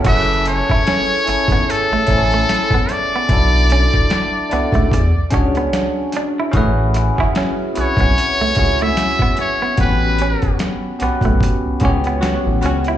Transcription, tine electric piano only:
X:1
M:4/4
L:1/16
Q:"Swing 16ths" 1/4=74
K:F#m
V:1 name="Tine electric piano"
[CEGAB]2 z [CEGAc]2 z [CEGAc]3 z [CEA^Bcg]4- [CEABcg] z | [CDEFAd]4- [CDEFAd] z [DEFAd]2 z2 [CDFGc]4- [CDFGc] z | [CEFGB]2 z [CEFGc]2 z [^B,CEFG=B]3 z [CEFGc]4- [CEFGc] z | [B,^B,CF=G=B]4- [=B,^B,CFG=B] z [=B,CFGB]3 z [B,CFGc]4- [B,CFGc] z |]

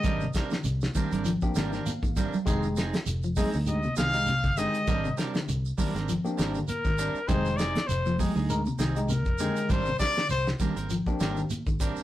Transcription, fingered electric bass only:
X:1
M:4/4
L:1/16
Q:"Swing 16ths" 1/4=100
K:Ablyd
V:1 name="Fingered electric bass" clef=bass
A,,,2 z2 C,,2 z A,,,2 z A,,,2 z A,,,2 z | F,,,4 F,,,3 D,,3 C,,3 G,,,2 z | A,,,2 z2 C,,2 z A,,,2 z A,,,2 z A,,,2 z | F,,,4 F,,,3 D,,3 C,,3 F,,2 z |
A,,,2 z2 C,,2 z A,,,2 z A,,,2 z A,,,2 z |]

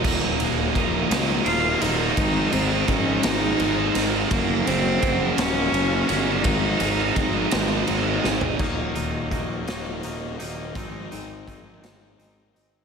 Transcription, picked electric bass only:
X:1
M:6/8
L:1/8
Q:3/8=56
K:Ebdor
V:1 name="Picked electric bass" clef=bass
E,,, E,,, E,,, D,, E,,, E,,, | A,,, A,,, A,,, A,,, A,,, A,,, | G,,, G,,, G,,, E,,, G,,, =G,,, | A,,, A,,, A,,, A,,, A,,, A,,, |
E,,, E,,, E,,, E,,, E,,, E,,, | A,,, A,,, A,,, A,,, A,,, A,,, |]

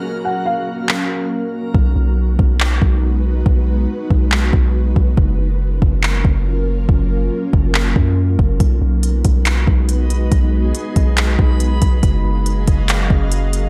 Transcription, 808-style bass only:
X:1
M:4/4
L:1/8
Q:1/4=140
K:Blyd
V:1 name="808-style bass" clef=bass
z8 | B,,, B,,,2 B,,,2 B,,,3 | B,,,2 z B,,,2 B,,,2 B,,, | F,,, F,,,2 F,,,2 F,,,3 |
F,,,2 z F,,,2 F,,2 F,,, | B,,, B,,,2 B,,,2 B,,,3 | B,,,2 z B,,,2 B,,,2 B,,, | F,,, F,,,2 F,,,2 F,,,3 |]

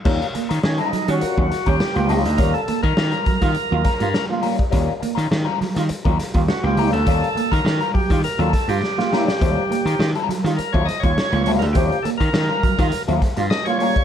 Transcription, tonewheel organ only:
X:1
M:4/4
L:1/16
Q:1/4=102
K:Ebmix
V:1 name="Tonewheel organ"
z4 D E2 _G4 =G3 E2 | B =A2 B8- B2 z3 | z12 _G =G2 =A- | =A3 B3 G2 B A2 G4- G- |
G4- G z3 B d e d3 d B | G2 =A B6 z3 e d d2 |]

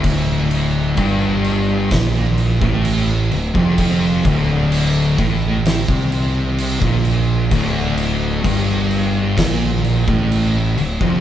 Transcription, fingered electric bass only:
X:1
M:4/4
L:1/16
Q:1/4=64
K:Dm
V:1 name="Fingered electric bass" clef=bass
D,,,4 G,,,4 B,,,3 A,,,3 D,,, F,,,- | F,,,2 D,,,4 A,,,3 C,,4 B,,,3 | D,,,4 G,,,4 B,,,3 A,,,3 D,,, F,,, |]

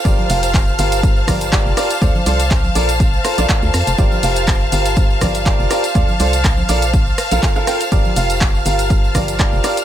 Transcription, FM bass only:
X:1
M:4/4
L:1/16
Q:"Swing 16ths" 1/4=122
K:Gm
V:1 name="FM bass" clef=bass
G,,, z F,,,3 z G,,,3 z G,,,2 z F,,, z2 | D,, z C,,3 z B,,,3 z2 B,,, z D,, F,, F,,, | G,,, z F,,,3 z G,,,3 z G,,,2 z F,,, z2 | D,, z C,,3 z B,,,3 z2 B,,, z4 |
G,,, z F,,,3 z G,,,3 z G,,,2 z F,,, z2 |]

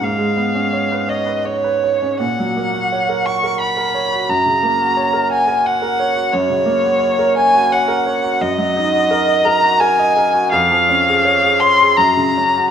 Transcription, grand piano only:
X:1
M:3/4
L:1/16
Q:1/4=86
K:F#
V:1 name="Grand piano"
G,, G, B, C c B c B c B c C | A,, F, A, F c A f A f A c F | F,, C, A, F c A f A f A c F | [K:Gblyd] ^F,, ^C, ^A, ^F ^c ^A c F c A c F |
G,, G, E G B e B G B e B G | F,, F, D A d A d A G,, D, D G |]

